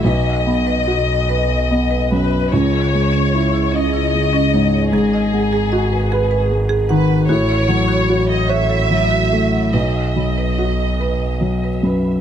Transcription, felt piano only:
X:1
M:6/8
L:1/8
Q:3/8=49
K:Bmix
V:1 name="Felt piano" clef=bass
B,,, B, F B B, F,, | C,, G, E d G, G,, | G,, G, F B G, D, | A,, F, F c F, A, |
B,,, F, F B F, [F,,B] |]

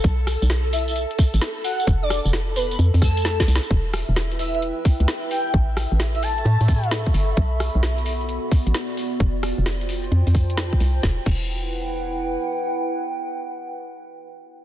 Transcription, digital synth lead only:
X:1
M:4/4
L:1/16
Q:"Swing 16ths" 1/4=131
K:Edor
V:1 name="Digital synth lead"
z6 e e z6 f2 | z d2 z3 B B z2 A3 z3 | z6 e e z6 g2 | z4 z e a6 z4 |
z16 | z16 | z16 | z16 |]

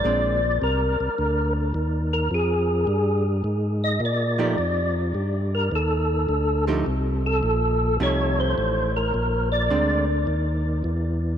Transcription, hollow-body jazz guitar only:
X:1
M:4/4
L:1/8
Q:"Swing" 1/4=105
K:Fdor
V:1 name="Hollow-body jazz guitar"
[A,CD] z6 z | z6 z [F,=A,EG] | z6 z [F,=A,EG] | z4 [F,=A,EG]3 z |
z2 [A,CD] z4 z |]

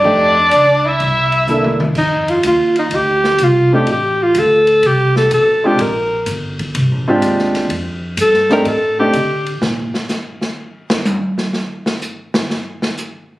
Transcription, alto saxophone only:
X:1
M:4/4
L:1/16
Q:"Swing" 1/4=125
K:Bb
V:1 name="Alto saxophone"
d6 =e8 z2 | E2 F2 F2 E2 G4 F2 G2 | G2 F2 A4 G2 A2 A2 G2 | B4 z12 |
z4 A2 B2 A2 G4- G z | z16 | z16 |]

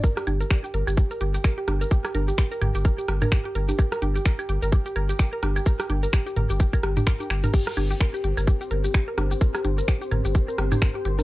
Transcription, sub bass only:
X:1
M:4/4
L:1/16
Q:"Swing 16ths" 1/4=128
K:Cdor
V:1 name="Sub bass" clef=bass
z2 G,,, z3 G,,, G,,, z2 G,,, z3 G,,, z | z2 G,,, z3 G,,, G,,, z2 G,,, z3 G,,, z | z2 G,,, z3 G,,, G,,, z2 G,,, z3 G,,, z | z2 G,,, z3 G,,, G,,, z2 G,,, z3 G,,, z |
z2 G,,, z3 G,,, G,,, z2 G,,, z3 G,,, z | z2 G,,, z3 G,,, G,,, z2 G,,, z3 G,,, z |]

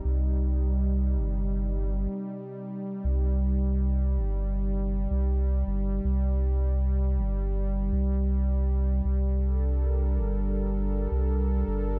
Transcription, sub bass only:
X:1
M:4/4
L:1/16
Q:1/4=80
K:Cdor
V:1 name="Sub bass" clef=bass
C,,6 G,,,4- G,,, z4 z | C,,6 G,,,4- G,,, C,,3 G,,,2 | C,,6 G,,,4 C,,6 | C,,6 G,,,4- G,,, C,,3 G,,,2 |]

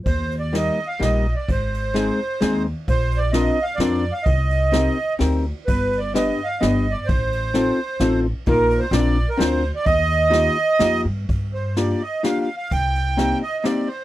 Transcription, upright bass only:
X:1
M:3/4
L:1/8
Q:1/4=129
K:Eb
V:1 name="Upright bass" clef=bass
E,,4 B,,,2 | A,,,4 E,,2 | B,,,4 F,,2 | C,,4 D,,2 |
G,,,4 G,,,2 | =A,,,4 A,,,2 | B,,,2 B,,,2 D,,2 | E,,4 F,, G,, |
[K:Gm] G,,4 z2 | C,,4 z2 |]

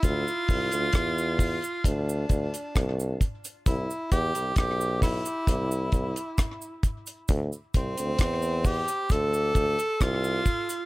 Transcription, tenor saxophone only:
X:1
M:4/4
L:1/8
Q:1/4=66
K:Ddor
V:1 name="Tenor saxophone"
F4 D3 z | E G G E4 z | z C2 G A2 F2 |]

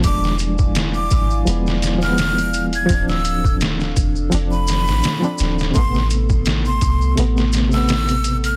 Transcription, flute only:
X:1
M:4/4
L:1/16
Q:"Swing 16ths" 1/4=84
K:Am
V:1 name="Flute"
d'2 z3 d'3 z3 f'4 ^g'- | ^g' e'3 z4 z b6 z | c'2 z3 c'3 z3 e'4 f' |]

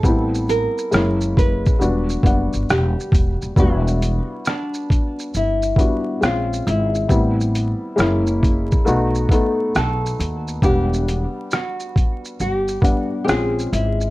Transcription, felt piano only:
X:1
M:4/4
L:1/8
Q:"Swing 16ths" 1/4=68
K:Em
V:1 name="Felt piano"
[G,B,CE]2 [^G,^A,^CE]2 [=G,B,DF] [G,B,Df]2 z | [G,B,DF]3 z2 [G,B,DF] [^G,^B,^C^E]2 | [G,B,CE]2 [^G,^A,^CE]2 [=A,B,^DF] [A,B,DA]2 z | [G,B,Df]3 z2 [G,B,Df] [^G,^B,^C^E]2 |]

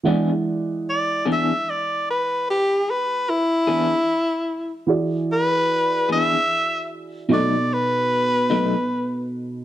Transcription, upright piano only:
X:1
M:12/8
L:1/8
Q:3/8=50
K:Emix
V:1 name="Upright piano"
[E,G,df]12 | [E,FGd]6 [B,,^DAc']6 |]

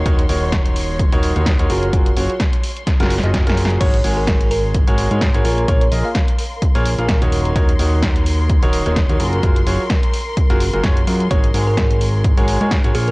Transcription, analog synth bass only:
X:1
M:4/4
L:1/16
Q:"Swing 16ths" 1/4=128
K:Abmix
V:1 name="Analog synth bass" clef=bass
E,,,2 E,,,6- E,,, E,,,2 E,,2 E,, G,,,2 | G,,,2 G,,, z6 G,,,2 G,,,2 G,,,3 | A,,,2 A,,,6- A,,, A,,,2 A,,2 A,,, B,,,2 | B,,,2 B,,, z6 B,,,2 B,,,2 E,,,3 |
E,,,2 E,,,6- E,,, E,,,2 E,,,2 E,, G,,,2 | G,,,2 G,,, z6 G,,,2 G,,, G,,,2 G,,2 | A,,,2 A,,,6- A,,, A,,,2 A,,2 A,,, B,,,2 |]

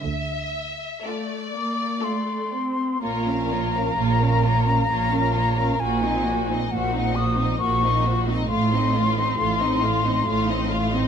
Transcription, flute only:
X:1
M:3/4
L:1/8
Q:1/4=66
K:Dm
V:1 name="Flute"
z3 d' c'2 | [K:Bbm] b6 | a2 g e' d' z | c'6 |]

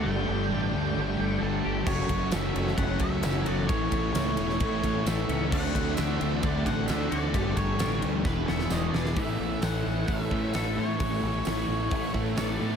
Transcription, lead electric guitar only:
X:1
M:4/4
L:1/8
Q:1/4=132
K:Amix
V:1 name="Lead electric guitar"
g6 A2 | c2 e2 f e2 d | c6 e2 | f2 e2 d f e d- |
d c2 z B e d2 | [K:A] e2 f2 e3 c- | c4- c z d2 |]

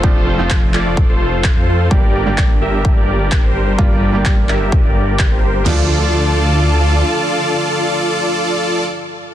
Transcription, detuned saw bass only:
X:1
M:4/4
L:1/16
Q:1/4=128
K:Dm
V:1 name="Detuned saw bass" clef=bass
F,,,3 F,,,3 F,,,3 F,,,4 F,,3 | G,,,3 G,,,3 G,,,3 G,,,4 G,,,3 | G,,,3 G,,,3 G,,,3 G,,,4 G,,,3 | D,,12 z4 |
z16 |]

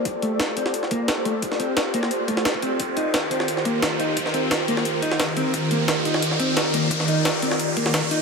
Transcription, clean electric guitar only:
X:1
M:4/4
L:1/8
Q:1/4=175
K:Eblyd
V:1 name="Clean electric guitar"
z A, z C z B, z A, | z C z B, z A, z C | z E z C z B, z E | z C z B, z E z C |
z B, z E z C z B, | z E z C z B, z E |]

